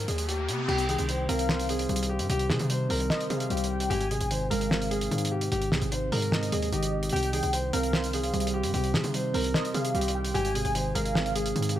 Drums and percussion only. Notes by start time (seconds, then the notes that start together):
0.08 closed hi-hat
0.18 closed hi-hat
0.29 closed hi-hat
0.49 closed hi-hat
0.68 crash
0.78 closed hi-hat
0.89 closed hi-hat
0.98 closed hi-hat
1.09 closed hi-hat
1.29 closed hi-hat
1.39 closed hi-hat
1.49 snare
1.59 closed hi-hat
1.69 closed hi-hat
1.79 closed hi-hat
1.89 closed hi-hat
1.96 closed hi-hat
2.03 closed hi-hat
2.19 closed hi-hat
2.30 closed hi-hat
2.39 closed hi-hat
2.50 snare
2.59 closed hi-hat
2.70 closed hi-hat
2.90 open hi-hat
3.00 closed hi-hat
3.10 snare
3.21 closed hi-hat
3.30 closed hi-hat
3.40 closed hi-hat
3.50 closed hi-hat
3.57 closed hi-hat
3.64 closed hi-hat
3.80 closed hi-hat
3.91 closed hi-hat
4.00 closed hi-hat
4.11 closed hi-hat
4.21 closed hi-hat
4.31 closed hi-hat
4.51 closed hi-hat
4.61 closed hi-hat
4.71 snare
4.82 closed hi-hat
4.91 closed hi-hat
5.01 closed hi-hat
5.11 closed hi-hat
5.18 closed hi-hat
5.25 closed hi-hat
5.41 closed hi-hat
5.52 closed hi-hat
5.62 closed hi-hat
5.72 snare
5.82 closed hi-hat
5.92 closed hi-hat
6.12 open hi-hat
6.22 closed hi-hat
6.32 snare
6.43 closed hi-hat
6.52 closed hi-hat
6.62 closed hi-hat
6.73 closed hi-hat
6.83 closed hi-hat
7.03 closed hi-hat
7.09 closed hi-hat
7.16 closed hi-hat
7.23 closed hi-hat
7.33 closed hi-hat
7.43 closed hi-hat
7.53 closed hi-hat
7.73 closed hi-hat
7.83 closed hi-hat
7.93 snare
8.04 closed hi-hat
8.13 closed hi-hat
8.23 closed hi-hat
8.34 closed hi-hat
8.40 closed hi-hat
8.47 closed hi-hat
8.63 closed hi-hat
8.74 closed hi-hat
8.84 closed hi-hat
8.94 snare
9.04 closed hi-hat
9.14 closed hi-hat
9.34 open hi-hat
9.44 closed hi-hat
9.54 snare
9.65 closed hi-hat
9.74 closed hi-hat
9.85 closed hi-hat
9.95 closed hi-hat
10.01 closed hi-hat
10.08 closed hi-hat
10.25 closed hi-hat
10.35 closed hi-hat
10.45 closed hi-hat
10.55 closed hi-hat
10.65 closed hi-hat
10.75 closed hi-hat
10.95 closed hi-hat
11.05 closed hi-hat
11.15 snare
11.26 closed hi-hat
11.36 closed hi-hat
11.46 closed hi-hat
11.56 closed hi-hat
11.62 closed hi-hat
11.69 closed hi-hat